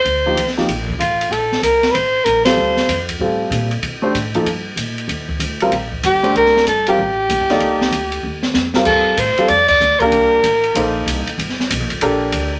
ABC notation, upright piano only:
X:1
M:4/4
L:1/8
Q:"Swing" 1/4=191
K:Cdor
V:1 name="Upright piano"
z [F,B,EG] z [F,B,EG] z4 | z6 z [G,CFA]- | [G,CFA]2 z2 [G,CFA]3 z | z [A,DGc] z [F,B,EA] z4 |
z3 [G,CFB] z3 [A,DGc]- | [A,DGc]2 z [G,CFB] z3 [B,EAd]- | [B,EAd]2 z4 z [G,CFB]- | [K:Cm] [G,CFB]2 z [G,CF=A] z3 [B,DGB]- |
[B,DGB]2 z2 [B,E=Ac]3 z | z4 [DG=AB]3 z |]